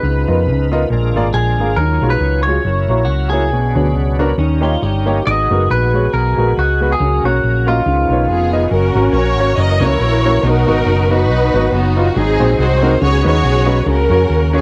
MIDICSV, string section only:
0, 0, Header, 1, 2, 480
1, 0, Start_track
1, 0, Key_signature, 6, "major"
1, 0, Tempo, 434153
1, 38, Time_signature, 4, 2, 24, 8
1, 9158, Tempo, 428878
1, 16242, End_track
2, 0, Start_track
2, 0, Title_t, "String section"
2, 0, Program_c, 0, 48
2, 9158, Note_on_c, 0, 68, 89
2, 9162, Note_on_c, 0, 59, 65
2, 9166, Note_on_c, 0, 65, 60
2, 9607, Note_off_c, 0, 68, 0
2, 9609, Note_off_c, 0, 59, 0
2, 9611, Note_off_c, 0, 65, 0
2, 9653, Note_on_c, 0, 66, 79
2, 9655, Note_on_c, 0, 61, 76
2, 9655, Note_on_c, 0, 70, 93
2, 10113, Note_off_c, 0, 70, 0
2, 10117, Note_off_c, 0, 66, 0
2, 10124, Note_on_c, 0, 73, 100
2, 10126, Note_on_c, 0, 70, 70
2, 10130, Note_on_c, 0, 66, 71
2, 10567, Note_off_c, 0, 61, 0
2, 10572, Note_off_c, 0, 70, 0
2, 10574, Note_off_c, 0, 66, 0
2, 10605, Note_off_c, 0, 73, 0
2, 10621, Note_on_c, 0, 70, 83
2, 10622, Note_on_c, 0, 75, 115
2, 10863, Note_off_c, 0, 70, 0
2, 10876, Note_on_c, 0, 70, 85
2, 10878, Note_on_c, 0, 64, 83
2, 10878, Note_on_c, 0, 73, 109
2, 10881, Note_off_c, 0, 75, 0
2, 11523, Note_off_c, 0, 70, 0
2, 11524, Note_off_c, 0, 64, 0
2, 11569, Note_off_c, 0, 73, 0
2, 11579, Note_on_c, 0, 70, 106
2, 11584, Note_on_c, 0, 63, 77
2, 11586, Note_on_c, 0, 66, 80
2, 12320, Note_off_c, 0, 63, 0
2, 12320, Note_off_c, 0, 66, 0
2, 12320, Note_off_c, 0, 70, 0
2, 12333, Note_on_c, 0, 63, 85
2, 12333, Note_on_c, 0, 66, 82
2, 12336, Note_on_c, 0, 71, 106
2, 13011, Note_off_c, 0, 63, 0
2, 13011, Note_off_c, 0, 66, 0
2, 13017, Note_off_c, 0, 71, 0
2, 13020, Note_on_c, 0, 59, 71
2, 13024, Note_on_c, 0, 66, 93
2, 13025, Note_on_c, 0, 63, 70
2, 13460, Note_off_c, 0, 59, 0
2, 13462, Note_off_c, 0, 63, 0
2, 13495, Note_off_c, 0, 66, 0
2, 13507, Note_on_c, 0, 60, 70
2, 13509, Note_on_c, 0, 63, 78
2, 13512, Note_on_c, 0, 68, 112
2, 13971, Note_off_c, 0, 63, 0
2, 13978, Note_off_c, 0, 68, 0
2, 13980, Note_on_c, 0, 66, 78
2, 13985, Note_on_c, 0, 63, 75
2, 13988, Note_on_c, 0, 72, 101
2, 14410, Note_off_c, 0, 60, 0
2, 14419, Note_off_c, 0, 66, 0
2, 14421, Note_off_c, 0, 63, 0
2, 14456, Note_off_c, 0, 72, 0
2, 14461, Note_on_c, 0, 66, 77
2, 14461, Note_on_c, 0, 68, 80
2, 14470, Note_on_c, 0, 73, 108
2, 14706, Note_off_c, 0, 73, 0
2, 14709, Note_off_c, 0, 66, 0
2, 14711, Note_off_c, 0, 68, 0
2, 14723, Note_on_c, 0, 66, 88
2, 14725, Note_on_c, 0, 68, 82
2, 14728, Note_on_c, 0, 73, 104
2, 15364, Note_off_c, 0, 66, 0
2, 15365, Note_off_c, 0, 68, 0
2, 15366, Note_off_c, 0, 73, 0
2, 15422, Note_on_c, 0, 61, 69
2, 15424, Note_on_c, 0, 66, 69
2, 15434, Note_on_c, 0, 70, 102
2, 16152, Note_off_c, 0, 61, 0
2, 16161, Note_on_c, 0, 65, 70
2, 16164, Note_off_c, 0, 70, 0
2, 16165, Note_on_c, 0, 61, 74
2, 16169, Note_on_c, 0, 68, 93
2, 16242, Note_off_c, 0, 61, 0
2, 16242, Note_off_c, 0, 65, 0
2, 16242, Note_off_c, 0, 66, 0
2, 16242, Note_off_c, 0, 68, 0
2, 16242, End_track
0, 0, End_of_file